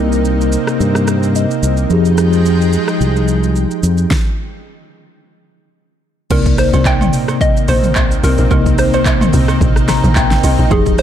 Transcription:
Already playing: C2 C3 A#3 C4 D#4 A#4
0.12 shaker
0.25 shaker
0.41 shaker
0.52 shaker
0.67 cross-stick, shaker
0.80 G2, shaker
0.95 cross-stick, shaker
1.07 cross-stick, shaker
1.23 shaker
1.35 D#5, shaker
1.51 shaker
1.63 C2, shaker
1.77 shaker
1.90 F2 F3 G#3 D#4 G4 G#4 G5, shaker
2.05 shaker
2.18 cross-stick, shaker
2.33 shaker
2.45 shaker
2.61 shaker
2.73 shaker
2.88 cross-stick, shaker
3.01 C2, shaker
3.16 shaker
3.28 shaker
3.43 shaker
3.56 shaker
3.71 shaker
3.83 F2, shaker
3.97 shaker
4.11 kick, snare
6.30 C2 C3 A#3 C4 D#4 A#4 D5, kick, crash, high agogo, shaker
6.46 kick, shaker
6.58 C5, cross-stick, open hi-hat, shaker
6.73 C2, high agogo, shaker
6.85 G5, kick, clap, low woodblock, shaker
7.01 mid tom, high agogo, shaker
7.13 open hi-hat, shaker
7.28 cross-stick, high agogo, shaker
7.41 D#5, kick, shaker
7.57 shaker
7.68 A#1 C5, open hi-hat, high agogo, shaker
7.83 mid tom, shaker
7.95 C2, kick, clap, high agogo, low woodblock, shaker
8.11 shaker
8.23 C2 A#4, open hi-hat, high agogo, shaker
8.38 A#1, shaker
8.50 C2 C3 A#3 D#4 A#4 D#5, kick, high agogo, shaker
8.66 kick, shaker
8.78 C5, cross-stick, open hi-hat, shaker
8.93 C5, high agogo, shaker
9.06 kick, clap, low woodblock, shaker
9.21 mid tom, high agogo, shaker
9.33 C2, open hi-hat, shaker
9.48 cross-stick, high agogo, shaker
9.61 A#1, kick, shaker
9.76 cross-stick, shaker
9.88 A#5, cross-stick, snare, open hi-hat, high agogo, shaker
10.04 A#1, mid tom, shaker
10.16 A#1 G5, kick, clap, high agogo, low woodblock, shaker
10.31 snare, shaker
10.44 C2 D#5, open hi-hat, high agogo, shaker
10.58 A#1, shaker
10.70 F1 F3 G#3 D#4 G4 G#4 G5, kick, high agogo, shaker
10.86 kick, shaker
10.98 C5, cross-stick, open hi-hat, shaker

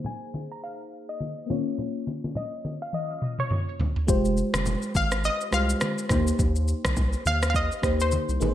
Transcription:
Already playing: A#3 D#4 G#4 C5
0.04 G#5, low conga
0.34 high conga
0.52 A#5
0.64 F5
1.09 D#5
1.20 high conga
1.46 A#3 C4 F4, high conga, low conga
1.51 C#4 C#5
1.78 low conga
2.07 high conga
2.24 high conga
2.35 D#5, low conga
2.65 high conga
2.82 F5
2.93 D#5, high tom
3.22 mid tom
3.39 C#5, mid tom
3.51 mid tom, high conga
3.80 floor tom, high conga, low conga
3.96 floor tom
4.07 F1 G#3 F4 G4 C5, kick, low conga, shaker
4.25 shaker
4.37 shaker
4.54 F1, cross-stick, high conga, shaker
4.66 low conga, shaker
4.82 shaker
4.95 G#1 F5, kick, high conga, shaker
5.11 cross-stick, shaker
5.24 D#5, shaker
5.41 shaker
5.51 C2 G#3 F4 G4 C5 F5, cross-stick, shaker
5.69 shaker
5.81 cross-stick, high conga, shaker
5.98 shaker
6.09 D#2 A#3 D#4 G4 C5, kick, cross-stick, high conga, low conga, shaker
6.27 shaker
6.39 D#2, kick, low conga, shaker
6.56 shaker
6.68 shaker
6.85 C2, kick, cross-stick, high conga, shaker
6.97 kick, low conga, shaker
7.13 shaker
7.26 D#2 F5, high conga, shaker
7.42 cross-stick, shaker
7.50 F5
7.54 D#5, kick, shaker
7.72 shaker
7.82 D#2 A#3 D#4 G4 C5, kick, cross-stick, shaker
8.00 C5, shaker
8.11 high conga, shaker
8.29 C2, shaker
8.40 G#1 A#3 D#4 G#4 B4, high conga, low conga, shaker
8.49 C5

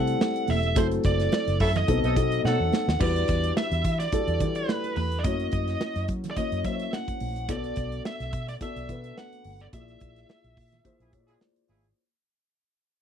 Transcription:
Already playing: C3 G3 A3 C4 E4 A4 F#5
0.07 closed hi-hat
0.21 snare, high conga
0.36 closed hi-hat
0.48 E1 E5, open hi-hat, high conga
0.63 closed hi-hat
0.75 F#1 F#3 A3 C4 E4 A4 C5, kick, closed hi-hat, muted conga
0.91 closed hi-hat
1.04 F#1 D5, kick, closed hi-hat
1.20 snare, closed hi-hat
1.32 snare, high conga
1.47 F#1, snare, closed hi-hat
1.60 F#2 F#3 E4 A4 E5, kick, open hi-hat
1.75 D#5, snare, closed hi-hat, low conga
1.87 B1 F#3 B3 C4 D#4 A4, kick, closed hi-hat, muted conga
2.03 B1 F#3 D#4 A4, closed hi-hat
2.16 B2 F#3 B3 C4 D#4 A4, kick, closed hi-hat, muted conga
2.32 closed hi-hat
2.44 B2 F#3 D#4 A4 F#5, snare, high conga
2.60 E2
2.73 snare, high conga
2.88 D#2, snare
2.99 E2 G3 D4 E4 F#4 B4 D5, kick, crash, muted conga
3.16 closed hi-hat
3.28 E2, kick, closed hi-hat
3.44 closed hi-hat
3.57 E5, snare, high conga
3.71 E2, closed hi-hat
3.84 E3, kick, closed hi-hat
3.99 D5, snare, closed hi-hat
4.12 G3 D4 E4 F#4 A4, kick, closed hi-hat, muted conga
4.28 E2, closed hi-hat
4.40 E3 G3 D4 E4 F#4 D5, kick, closed hi-hat, muted conga, low conga
4.55 B4, closed hi-hat
4.69 snare, high conga
4.84 closed hi-hat, high conga
4.96 E2 B4, open hi-hat, high conga
5.12 closed hi-hat
5.19 D5
5.24 F#2 A3 C#4 E4 F#4 C#5 D#5, kick, closed hi-hat, muted conga
5.31 A#3
5.40 closed hi-hat
5.52 F#2, kick, closed hi-hat
5.68 snare, closed hi-hat
5.81 snare, high conga
5.96 F#2, snare, closed hi-hat
6.08 F#3, kick, closed hi-hat
6.24 snare, closed hi-hat, low conga
6.31 D5
6.36 A#3 C#4 E4 F#4 D#5, kick, closed hi-hat, muted conga, low conga
6.52 F#2, closed hi-hat
6.64 F#3 A#3 C#4 E4 F#4 C5 E5, kick, closed hi-hat
6.72 C#5
6.79 closed hi-hat
6.93 F#5, snare, high conga
7.08 kick, closed hi-hat, high conga
7.20 A#1, open hi-hat, high conga
7.36 closed hi-hat
7.49 B1 B3 D4 F#4 A4 C#5 D5, kick, closed hi-hat, muted conga
7.56 D5
7.64 closed hi-hat
7.76 B1, kick, closed hi-hat
7.92 closed hi-hat
8.05 E5, snare, high conga
8.20 B1, snare, closed hi-hat
8.33 B2, kick, closed hi-hat
8.48 D5, snare, closed hi-hat
8.61 B3 D4 F#4 A4 D5 E5, kick, closed hi-hat, muted conga
8.76 B1, closed hi-hat
8.89 B2 B3 D4 F#4 A4 B4, kick, closed hi-hat, muted conga, low conga
9.04 closed hi-hat
9.17 F#5, snare, high conga
9.33 closed hi-hat, high conga
9.44 G1, open hi-hat, high conga
9.60 D5, closed hi-hat
9.72 A#1 A#3 E4 F4 G#4 D5 E5, kick, closed hi-hat, muted conga
9.88 closed hi-hat
10.00 A#1, kick, closed hi-hat
10.16 snare, closed hi-hat
10.29 snare, high conga
10.44 A#1, closed hi-hat
10.57 A#2, kick, open hi-hat
10.72 snare, closed hi-hat, low conga
10.84 A#3 E4 F4 G#4 C5, kick, closed hi-hat, muted conga, low conga
11.00 A#1 F3 E4 G#4, closed hi-hat
11.12 A#2 A#3 E4 F4 G#4 C#5, kick, closed hi-hat
11.20 D5
11.27 F3 E4 G#4, closed hi-hat
11.41 snare, high conga
11.56 closed hi-hat, high conga
11.68 G#1 F3 E4 G#4, open hi-hat, high conga
11.84 closed hi-hat

